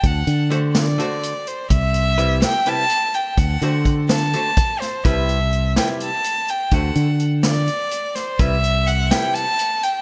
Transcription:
<<
  \new Staff \with { instrumentName = "Violin" } { \time 7/8 \key c \lydian \tempo 4 = 126 fis''4 r8 d''4. c''8 | e''4. g''8 a''4 g''8 | fis''4 r8 a''4. c''8 | e''4. g''8 a''4 g''8 |
fis''4 r8 d''4. c''8 | e''4 fis''8 g''8 a''4 g''8 | }
  \new Staff \with { instrumentName = "Hollow-body jazz guitar" } { \time 7/8 \key c \lydian r4 <d a fis' c''>8 r8 <d a fis' c''>8 r4 | r4 <c g e' b'>8 r8 <c g e' b'>8 r4 | r8 <d a fis' c''>4. <d a fis' c''>8 r4 | <c g e' b'>8 r4 <c g e' b'>8 r4. |
<d a fis' c''>8 r2. | <c g e' b'>8 r4 <c g e' b'>8 r4. | }
  \new Staff \with { instrumentName = "Fingered electric bass" } { \clef bass \time 7/8 \key c \lydian d,8 d2 r4 | c,2 r4. | d,8 d2 r4 | c,2 r4. |
d,8 d2 r4 | c,2 r4. | }
  \new DrumStaff \with { instrumentName = "Drums" } \drummode { \time 7/8 <hh bd>8 hh8 hh8 <hh sn>8 hh8 hh8 hh8 | <hh bd>8 hh8 hh8 <hh sn>8 hh8 hh8 hh8 | <hh bd>8 hh8 <hh bd>8 <hh sn>8 hh8 <hh bd>8 <hh sn>8 | <hh bd>8 hh8 hh8 <hh sn>8 hh8 hh8 hh8 |
<hh bd>8 hh8 hh8 <hh sn>8 hh8 hh8 <hh sn>8 | <hh bd>8 hh8 hh8 <hh sn>8 hh8 hh8 hh8 | }
>>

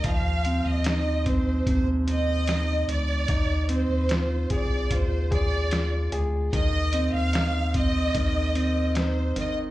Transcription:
<<
  \new Staff \with { instrumentName = "Violin section" } { \time 4/4 \key f \dorian \tempo 4 = 74 f''8. ees''8. c''8 c''8 ees''4 d''8~ | d''8 c''4 d''8 c''8 d''4 r8 | ees''8. f''8. ees''4. c''8 ees''8 | }
  \new Staff \with { instrumentName = "Grand piano" } { \time 4/4 \key f \dorian f8 c'8 ees'8 c'8 c8 c'8 ees'4 | ees'8 c'8 f'8 aes'8 f'8 aes'8 f'8 aes'8 | ees8 c'8 ees'8 c'8 ees8 c'8 ees'8 ees8 | }
  \new Staff \with { instrumentName = "Sub bass" } { \clef bass \time 4/4 \key f \dorian ees,8. ees,4~ ees,16 ees,4. d,8 | ees,8. ees,8. c,8 ees,4. d,8 | ees,8. ees,4~ ees,16 ees,4. aes,,8 | }
  \new DrumStaff \with { instrumentName = "Drums" } \drummode { \time 4/4 <hh bd>8 hh8 <hh sn>8 <hh bd>8 <hh bd>8 hh8 <hh sn>8 hh8 | <hh bd>8 hh8 <hh sn>8 <hh bd>8 <hh bd>8 <hh bd>8 <hh sn>8 hh8 | <hh bd>8 hh8 <hh sn>8 <hh bd>8 <hh bd>8 hh8 <hh sn>8 hh8 | }
>>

